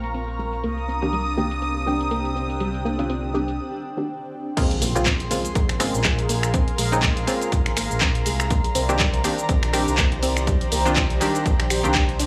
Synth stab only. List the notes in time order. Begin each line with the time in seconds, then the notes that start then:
Already playing: C#3 G#3 A#3 C4 F4
1.02 D#3 A#3 C4 D4 G4
1.37 D#3 A#3 C4 D4 G4
1.86 D#3 A#3 C4 D4 G4
2.98 D#3 A#3 C4 D4 F4
3.33 D#3 A#3 C4 D4 G4
3.96 D#3 A#3 C4 D4 G4
4.57 C#3 G#3 A#3 C4 F4
4.95 C#3 G#3 A#3 C4 F4
5.30 C#3 G#3 A#3 C4 F4
5.79 C#3 G#3 A#3 C4 F4
6.92 C#3 G#3 A#3 C4 D#4
7.27 C#3 G#3 A#3 C4 F4
8.89 D#3 A#3 C4 D4 G4
9.24 D#3 A#3 C4 D4 G4
9.73 D#3 A#3 C4 D4 G4
10.85 D#3 A#3 C4 D4 F4
11.20 D#3 A#3 C4 D4 G4
11.83 D#3 A#3 C4 D4 G4